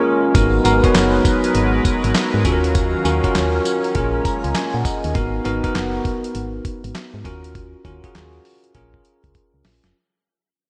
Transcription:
Already playing: analog synth pad G#3 A#3 C#4, tine electric piano C#4 F4 G#4 A#4
0.34 fm bass G#1, analog synth pad F#3 G#3 A#4 B4, tine electric piano B3 D#4 F#4 A#4, kick, closed hi-hat, tambourine
0.64 fm bass G#1, tine electric piano B3 D#4 F#4 A#4, closed hi-hat, tambourine
0.83 tine electric piano B3 D#4 F#4 C#5, kick, closed hi-hat
0.94 fm bass F#1, snare, clap, closed hi-hat, tambourine
1.25 kick, closed hi-hat, tambourine
1.44 closed hi-hat
1.55 fm bass G#1, closed hi-hat
1.85 kick, closed hi-hat, tambourine
2.04 fm bass G#1, closed hi-hat
2.15 snare, clap, closed hi-hat, tambourine
2.34 fm bass G#2
2.45 fm bass D#2, analog synth pad D#3 C#4 F5, tine electric piano C#4 F4 F#4 A4, kick, closed hi-hat, tambourine
2.52 tine electric piano A#4
2.64 closed hi-hat
2.75 kick, closed hi-hat, tambourine
3.05 fm bass D#2, tine electric piano C#4 F4 F#4 A#4, closed hi-hat, tambourine
3.23 tine electric piano C#4 F4 F#4 A#4, kick, closed hi-hat
3.35 fm bass D#2, snare, clap, closed hi-hat, tambourine
3.65 closed hi-hat, tambourine
3.84 closed hi-hat
3.95 fm bass A#1, analog synth pad G#3 A#3, tine electric piano C#4 F4 G#4 A#4, kick, closed hi-hat
4.25 tine electric piano A#5, kick, closed hi-hat, tambourine
4.44 fm bass C#2, tine electric piano G#5, closed hi-hat
4.55 tine electric piano G#5, snare, clap, closed hi-hat, tambourine
4.74 fm bass A#2, tine electric piano F#5
4.85 tine electric piano D#5, kick, closed hi-hat, tambourine
5.04 fm bass D#2, closed hi-hat
5.14 fm bass G#1, tine electric piano B3 D#4 F#4 A#4, kick, closed hi-hat
5.45 fm bass G#1, tine electric piano B3 D#4 F#4 A#4, closed hi-hat
5.63 tine electric piano B3 D#4 F#4 A#4, kick, closed hi-hat
5.75 fm bass F#1, snare, clap, closed hi-hat
6.05 kick, closed hi-hat
6.24 closed hi-hat
6.35 fm bass G#1, closed hi-hat
6.65 kick, closed hi-hat
6.84 fm bass G#1, closed hi-hat
6.95 snare, clap, closed hi-hat
7.14 fm bass G#2
7.25 fm bass D#2, tine electric piano C#4 F4 F#4 A#4, kick, closed hi-hat
7.44 closed hi-hat
7.55 kick, closed hi-hat
7.85 fm bass D#2, tine electric piano C#4 F4 F#4 A#4, kick, closed hi-hat
8.04 tine electric piano C#4 F4 F#4 G#4, kick, closed hi-hat
8.15 fm bass D#2, snare, clap, closed hi-hat
8.45 open hi-hat
8.64 closed hi-hat
8.75 fm bass A#1, tine electric piano C#4 F4 G#4 A#4, kick, closed hi-hat
8.94 kick
9.05 closed hi-hat
9.24 fm bass C#2, kick, closed hi-hat
9.35 kick, closed hi-hat
9.54 fm bass C#2
9.65 fm bass A#1, snare, open hi-hat
9.84 fm bass F1, snare, closed hi-hat

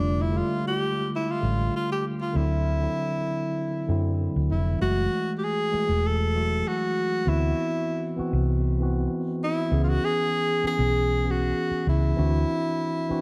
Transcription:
Already playing: fingered electric bass F1, tine electric piano D3 G3 A3 F4, tenor saxophone D4
0.21 tenor saxophone E4
0.32 tine electric piano D3 G3 G#3 F4
0.38 tine electric piano A3, tenor saxophone F4
0.67 tenor saxophone G4
1.15 tenor saxophone E4
1.31 tenor saxophone F4
1.41 fingered electric bass A1, tine electric piano D3 G3 A3 F4
1.76 tenor saxophone F4
1.92 tenor saxophone G4
2.21 tenor saxophone F4
2.33 fingered electric bass D2, tine electric piano D3 F#3 C4 E4, tenor saxophone E4
2.81 tine electric piano D3 F#3 C4 E4
3.88 fingered electric bass F#2, tine electric piano D3 F#3 C4 E4
4.36 fingered electric bass D2
4.51 fingered electric bass F1, tenor saxophone E4
4.80 fingered electric bass F#1, tine electric piano E3 G#3 A3 F#4, tenor saxophone F#4
5.38 tenor saxophone G4
5.44 tenor saxophone G#4
5.72 tine electric piano E3 G#3 A3 G#4, muted fingered electric bass stroke
5.89 fingered electric bass E1
6.06 tenor saxophone A4
6.34 tine electric piano E3 F#3 A3 F#4
6.68 tenor saxophone F#4
7.25 fingered electric bass D2, tine electric piano E3 B3 C4 F#4
7.29 tenor saxophone E4
8.17 tine electric piano E3 B3 C4 F#4, muted fingered electric bass stroke
8.33 fingered electric bass C2
8.80 tine electric piano E3 B3 C4 F#4
9.43 tenor saxophone E4
9.71 fingered electric bass C#2, tine electric piano E3 B3 C#4 G#4
9.83 tenor saxophone F4
9.89 tenor saxophone F#4
10.05 tenor saxophone G#4
10.62 tine electric piano E3 B3 C#4 G#4, muted fingered electric bass stroke
10.67 tenor saxophone G#4
10.79 fingered electric bass B1
11.23 tine electric piano E3 B3 C#4 G#4
11.31 tenor saxophone F#4
11.71 muted fingered electric bass stroke
11.87 fingered electric bass C#2, tenor saxophone E4
12.16 fingered electric bass D2, tine electric piano E3 C4 D4 F#4
13.09 tine electric piano E3 C4 D4 F#4, muted fingered electric bass stroke

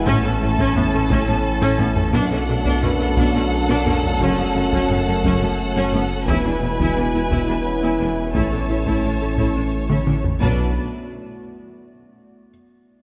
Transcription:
Already playing: trombone section E3, ambient pad E4 E5, grand piano F#5
0.06 double bass section A1, sub bass A1, trombone section A2, cello section A2, ambient pad A3 C#4, french horn section A3 C#4, synth pluck A3, viola section C#4, violin section A4 A5, taiko
0.24 cello section A2, viola section B3, synth pluck A4
0.41 double bass section A1, cello section A2, viola section C#4, synth pluck E4
0.58 cello section A2, synth pluck A3, viola section C#4, taiko
0.76 double bass section A1, cello section A2, viola section B3, synth pluck E4, taiko low
0.93 cello section A2, viola section C#4, synth pluck A4
1.10 double bass section A1, cello section A2, synth pluck A3, viola section C#4, taiko
1.27 cello section A2, viola section B3, synth pluck C#4
1.62 cello section A2, synth pluck A3, viola section C#4, taiko low-mid
1.79 double bass section A1, cello section A2, viola section B3, synth pluck C#4, taiko low-mid
1.96 taiko low
2.13 sub bass B1, double bass section B1, trombone section F#2 F#3, cello section B2, ambient pad B3 F#4 D5, synth pluck B3, viola section D4, french horn section D4, violin section A4 F#5, taiko
2.31 cello section B2, viola section C#4, synth pluck A4
2.48 double bass section B1, cello section B2, viola section D4, synth pluck F#4
2.65 cello section B2, synth pluck B3, viola section D4, taiko
2.83 double bass section B1, cello section B2, viola section C#4, synth pluck F#4, grand piano B4, taiko low
3.00 cello section B2, viola section D4, synth pluck A4
3.17 double bass section B1, cello section B2, synth pluck B3, viola section D4, taiko
3.34 cello section B2, viola section C#4, synth pluck D4
3.69 cello section B2, synth pluck B3, viola section D4
3.86 double bass section B1, cello section B2, viola section C#4, synth pluck D4, taiko low
4.04 taiko low
4.21 sub bass F#1, double bass section F#1, cello section F#2, synth pluck F#3, french horn section A3 C#4, viola section C#4, ambient pad C#4 C#5, taiko
4.38 cello section F#2, viola section B3, synth pluck F#4
4.55 double bass section F#1, cello section F#2, synth pluck C#4, viola section C#4
4.72 cello section F#2, synth pluck F#3, viola section C#4, taiko
4.90 double bass section F#1, cello section F#2, viola section B3, synth pluck C#4
5.07 cello section F#2, viola section C#4, synth pluck F#4
5.24 double bass section F#1, cello section F#2, synth pluck F#3, viola section C#4, taiko
5.42 cello section F#2, synth pluck A3, viola section B3
5.76 cello section F#2, synth pluck F#3, viola section C#4
5.93 double bass section F#1, cello section F#2, synth pluck A3, viola section B3
6.27 double bass section E1, sub bass E1, cello section E2, trombone section B2 E3, synth pluck E3, ambient pad G#3 B3 E4 E5, french horn section G#3 E4, viola section E4, violin section B4 G#5, taiko
6.45 cello section E2, viola section D4, synth pluck E4
6.62 double bass section E1, cello section E2, synth pluck B3, viola section E4
6.79 cello section E2, synth pluck E3, viola section E4, taiko
6.97 double bass section E1, cello section E2, synth pluck B3, viola section D4
7.14 cello section E2, viola section E4, synth pluck E4
7.31 double bass section E1, cello section E2, synth pluck E3, viola section E4, taiko
7.49 cello section E2, synth pluck G#3, viola section D4
7.66 grand piano C#4 C#5
7.83 cello section E2, synth pluck E3, viola section E4
8.00 double bass section E1, cello section E2, synth pluck G#3, viola section D4
8.35 sub bass A1, double bass section A1, cello section A2, trombone section A2, ambient pad A3 C#4, synth pluck A3, french horn section A3 C#4, viola section E4, violin section C#5 A5, taiko
8.52 cello section A2, viola section D4, synth pluck A4
8.69 double bass section A1, cello section A2, synth pluck E4, viola section E4
8.86 cello section A2, synth pluck A3, viola section E4, taiko
9.04 double bass section A1, cello section A2, viola section D4, synth pluck E4
9.21 cello section A2, viola section E4, synth pluck A4
9.38 double bass section A1, cello section A2, synth pluck A3, viola section E4, taiko
9.56 cello section A2, synth pluck C#4, viola section D4
9.89 cello section A2, synth pluck A3, viola section E4, taiko mid
10.07 double bass section A1, cello section A2, synth pluck C#4, viola section D4, taiko mid
10.24 taiko low
10.41 sub bass B1, double bass section B1, trombone section F#2 F#3, cello section B2, ambient pad A3 B3 F#4 D5, french horn section A3 D4, viola section D4, violin section B4 A5, taiko low

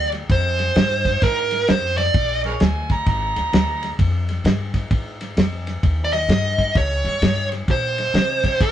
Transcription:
Already playing: upright bass D2
0.12 snare, ride
0.30 upright bass F2, lead electric guitar C5, kick, ride
0.59 snare, ride
0.76 upright bass G2, snare, ride
1.05 kick, snare, ride
1.22 upright bass G#2, lead electric guitar A#4, kick, snare, ride
1.51 snare, ride
1.68 upright bass F2, lead electric guitar C5, snare, ride
1.98 lead electric guitar D5, snare, ride
2.14 upright bass A#1, kick, ride
2.44 harmonica G#4 A#4 C#5, snare, ride
2.60 upright bass D2, harmonica G#5, snare, ride
2.90 harmonica A#5, kick, snare, ride
3.06 upright bass G#1, harmonica A#5, kick, snare, ride
3.36 upright bass D2, snare, ride
3.53 upright bass D2, snare, ride
3.83 snare, ride
3.99 upright bass F2, kick, ride
4.29 snare, ride
4.44 upright bass G2, snare, ride
4.74 kick, snare, ride
4.91 upright bass G#2, kick, ride
5.21 snare, ride
5.37 upright bass F2, snare, ride
5.67 snare, ride
5.83 upright bass D#2, kick, ride
6.04 lead electric guitar D5
6.13 lead electric guitar D#5, snare, ride
6.29 upright bass G2, snare, ride
6.58 kick, snare, ride
6.75 upright bass C#2, lead electric guitar C#5, kick, snare, ride
7.04 upright bass G2, snare, ride
7.22 upright bass G2, snare, ride
7.52 snare, ride
7.68 upright bass A#2, lead electric guitar C5, kick, ride
7.98 snare, ride
8.14 upright bass C3, snare, ride
8.44 kick, snare, ride
8.61 upright bass C#3, lead electric guitar A#4, kick, ride

